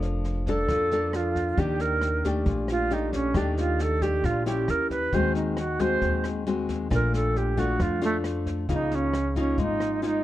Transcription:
Already playing: upright bass F1, nylon-string guitar F3 A#3 D4 A4
0.02 snare
0.25 snare
0.46 nylon-string guitar A#3 D4 A4, alto flute A4, kick, snare
0.69 upright bass F2, nylon-string guitar F3, kick, cross-stick, snare
0.91 nylon-string guitar A#3 D4 A4, snare
1.13 alto flute F4, cross-stick, snare
1.35 kick, snare
1.58 upright bass D#2, nylon-string guitar D#3 D4 G4, alto flute G4, kick, snare
1.80 alto flute A#4, snare
2.01 cross-stick, snare
2.24 nylon-string guitar A3 D4 G4, kick, snare
2.46 upright bass A#1, nylon-string guitar A#2, kick, snare
2.68 alto flute F4, cross-stick, snare
2.91 nylon-string guitar A3 D4 G4, alto flute D#4, snare
3.13 alto flute C#4, kick, snare
3.34 upright bass D#2, nylon-string guitar D#3 A3 D4 G4, alto flute D4, kick, cross-stick, snare
3.57 alto flute F4, snare
3.79 alto flute A4, snare
4.02 nylon-string guitar A3 D4 G4, alto flute G4, kick, snare
4.24 upright bass A#1, nylon-string guitar A#2, alto flute F4, kick, cross-stick, snare
4.46 nylon-string guitar C#4 E4 G4, alto flute G4, snare
4.68 upright bass D#2, alto flute A#4, cross-stick, snare
4.90 alto flute B4, kick, snare
5.13 upright bass D#2, nylon-string guitar D#3 G#3 C4 F#4, alto flute C5, kick, snare
5.35 alto flute D#4, snare
5.57 alto flute F#4, cross-stick, snare
5.79 nylon-string guitar G#3 C4 F#4, alto flute C5, kick, snare
6.01 upright bass D#2, nylon-string guitar D#3, kick, snare
6.24 cross-stick, snare
6.47 nylon-string guitar G#3 C4 F#4, snare
6.69 kick, snare
6.90 upright bass A#1, nylon-string guitar A#2 A3 D4 F4, alto flute A#4, kick, cross-stick, snare
7.14 alto flute A4, snare
7.36 alto flute G4, snare
7.57 nylon-string guitar A3 D4 F4, alto flute F#4, kick, snare
7.79 upright bass F2, nylon-string guitar F3, alto flute F4, kick, cross-stick, snare
8.02 nylon-string guitar A3 D4 F4, alto flute A3, snare
8.24 cross-stick, snare
8.47 kick, snare
8.69 upright bass C#2, nylon-string guitar C#3 A#3 D#4 F4, alto flute D#4, kick, snare
8.91 alto flute C#4, snare
9.14 cross-stick, snare
9.36 nylon-string guitar A#3 D#4 F4, alto flute C#4, kick, snare
9.58 upright bass G#1, nylon-string guitar G#3, alto flute D#4, kick, snare
9.80 cross-stick, snare
10.02 nylon-string guitar A#3 D#4 F4, alto flute D#4, snare

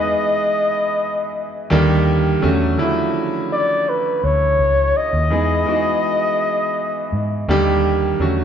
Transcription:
Already playing: grand piano E3 G#3 B3 D#4 G#4 B4, flugelhorn D#5
1.70 fingered electric bass D#2, grand piano D3 D#3 G3 A#3 G4
2.42 fingered electric bass E2, grand piano D3 F#3 A3 C#4 F#4
2.78 grand piano C#3 D3 F3 A3 E4
2.84 grand piano F#3
3.53 flugelhorn D5
3.89 flugelhorn B4
4.24 fingered electric bass D2, flugelhorn C#5
4.59 fingered electric bass C#2
4.97 flugelhorn D#5
5.13 fingered electric bass D#2
5.30 fingered electric bass E2, grand piano E3 G#3 B3 D#4 G#4
5.66 grand piano E3 G#3 B3 D#4 F#4
5.75 grand piano G#4
7.12 fingered electric bass G#2
7.48 fingered electric bass D#2, grand piano D3 D#3 G3 A#3 G4
8.19 fingered electric bass E2, grand piano D3 F#3 A3 C#4 F#4

